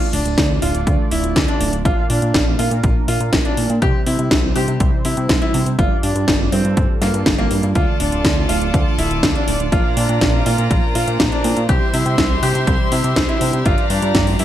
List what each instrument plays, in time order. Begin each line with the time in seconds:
Already playing: analog polysynth D3 A3 D4 F4 D5
0.13 analog synth bass D1, grand piano D4, open hi-hat
0.25 analog synth bass D1, closed hi-hat
0.38 analog synth bass D2, kick, snare, closed hi-hat
0.62 analog synth bass D1, analog polysynth D3 A3 D4 F4 D5, grand piano F4, open hi-hat
0.75 analog synth bass D1, closed hi-hat
0.87 analog synth bass D2, kick, closed hi-hat
1.11 analog synth bass D1, grand piano E4, open hi-hat
1.24 analog synth bass D1, closed hi-hat
1.36 analog synth bass D2, kick, snare, closed hi-hat
1.48 grand piano D4, closed hi-hat
1.61 analog synth bass D1, open hi-hat
1.73 analog synth bass D1, closed hi-hat
1.85 analog synth bass A#1, analog polysynth A#2 A#3 D4 F4 F5, grand piano F4, kick, closed hi-hat
2.10 analog synth bass A#2, grand piano D4, open hi-hat
2.22 analog synth bass A#2, closed hi-hat
2.34 analog synth bass A#1, kick, snare, closed hi-hat
2.59 analog synth bass A#2, analog polysynth A#2 A#3 D4 F4 A#4, grand piano F4, open hi-hat
2.71 analog synth bass A#2, closed hi-hat
2.83 analog synth bass A#1, kick, closed hi-hat
3.08 analog synth bass A#2, grand piano F4, open hi-hat
3.20 analog synth bass A#2, closed hi-hat
3.33 analog synth bass A#1, kick, snare, closed hi-hat
3.45 grand piano D4, closed hi-hat
3.57 analog synth bass A#2, open hi-hat
3.70 analog synth bass A#2, closed hi-hat
3.82 analog synth bass C2, analog polysynth C3 G3 C4 E4 C5, grand piano G4, kick, closed hi-hat
4.07 analog synth bass C3, grand piano E4, open hi-hat
4.19 analog synth bass C3, closed hi-hat
4.31 analog synth bass C2, kick, snare, closed hi-hat
4.56 analog synth bass C3, analog polysynth C3 G3 C4 E4 C5, grand piano G4, open hi-hat
4.68 analog synth bass C3, closed hi-hat
4.80 analog synth bass C2, kick, closed hi-hat
5.05 analog synth bass C3, grand piano E4, open hi-hat
5.17 analog synth bass C3, closed hi-hat
5.29 analog synth bass C2, kick, snare, closed hi-hat
5.42 grand piano E4, closed hi-hat
5.54 analog synth bass C3, open hi-hat
5.66 analog synth bass C3, closed hi-hat
5.79 analog synth bass G1, analog polysynth G2 G3 D4 F4 D5, grand piano F4, kick, closed hi-hat
6.03 analog synth bass G2, grand piano D4, open hi-hat
6.16 analog synth bass G2, closed hi-hat
6.28 analog synth bass G1, kick, snare, closed hi-hat
6.52 analog synth bass G2, analog polysynth G2 G3 D4 F4 A4, grand piano C4, open hi-hat
6.65 analog synth bass G2, closed hi-hat
6.77 analog synth bass G1, kick, closed hi-hat
7.01 analog synth bass G2, analog polysynth G2 G3 D4 F4 A4, grand piano A#3, snare, open hi-hat
7.14 analog synth bass G2, closed hi-hat
7.26 analog synth bass G1, kick, snare, closed hi-hat
7.38 grand piano A#3, closed hi-hat
7.51 analog synth bass G2, analog polysynth G3 D4 F4 D5, open hi-hat
7.63 analog synth bass G2, closed hi-hat
7.75 analog synth bass D2, analog polysynth D3 A3 D4 F4 D5, grand piano F4, string section F4 A4 D5 A5, kick, closed hi-hat
8.00 analog synth bass D1, grand piano D4, open hi-hat
8.12 analog synth bass D1, closed hi-hat
8.25 analog synth bass D2, kick, snare, closed hi-hat
8.49 analog synth bass D1, analog polysynth D3 A3 D4 F4 D5, grand piano F4, open hi-hat
8.62 analog synth bass D1, closed hi-hat
8.74 analog synth bass D2, kick, closed hi-hat
8.98 analog synth bass D1, grand piano E4, open hi-hat
9.11 analog synth bass D1, closed hi-hat
9.23 analog synth bass D2, kick, snare, closed hi-hat
9.35 grand piano D4, closed hi-hat
9.48 analog synth bass D1, open hi-hat
9.60 analog synth bass D1, closed hi-hat
9.72 analog synth bass A#1, analog polysynth A#2 A#3 D4 F4 F5, grand piano F4, string section F4 C5 A#5, kick, closed hi-hat
9.97 analog synth bass A#2, grand piano D4, open hi-hat
10.09 analog synth bass A#2, closed hi-hat
10.21 analog synth bass A#1, kick, snare, closed hi-hat
10.46 analog synth bass A#2, analog polysynth A#2 A#3 D4 F4 A#4, grand piano F4, open hi-hat
10.58 analog synth bass A#2, closed hi-hat
10.71 analog synth bass A#1, kick, closed hi-hat
10.95 analog synth bass A#2, grand piano F4, open hi-hat
11.07 analog synth bass A#2, closed hi-hat
11.20 analog synth bass A#1, kick, snare, closed hi-hat
11.32 grand piano D4, closed hi-hat
11.44 analog synth bass A#2, open hi-hat
11.57 analog synth bass A#2, closed hi-hat
11.69 analog synth bass C2, analog polysynth C3 G3 C4 E4 C5, grand piano G4, string section G4 E5 C6, kick, closed hi-hat
11.94 analog synth bass C3, grand piano E4, open hi-hat
12.06 analog synth bass C3, closed hi-hat
12.18 analog synth bass C2, kick, snare, closed hi-hat
12.43 analog synth bass C3, analog polysynth C3 G3 C4 E4 C5, grand piano G4, open hi-hat
12.55 analog synth bass C3, closed hi-hat
12.67 analog synth bass C2, kick, closed hi-hat
12.92 analog synth bass C3, grand piano E4, open hi-hat
13.04 analog synth bass C3, closed hi-hat
13.16 analog synth bass C2, kick, snare, closed hi-hat
13.29 grand piano E4, closed hi-hat
13.41 analog synth bass C3, open hi-hat
13.53 analog synth bass C3, closed hi-hat
13.66 analog synth bass G1, analog polysynth G2 G3 D4 F4 D5, grand piano F4, string section D5 F5 A#5, kick, closed hi-hat
13.78 closed hi-hat
13.90 analog synth bass G2, grand piano D4, open hi-hat
14.02 analog synth bass G2, closed hi-hat
14.15 analog synth bass G1, kick, snare, closed hi-hat
14.27 open hi-hat
14.39 analog synth bass G2, analog polysynth A2 E3 A3 C4 E4, grand piano E4, open hi-hat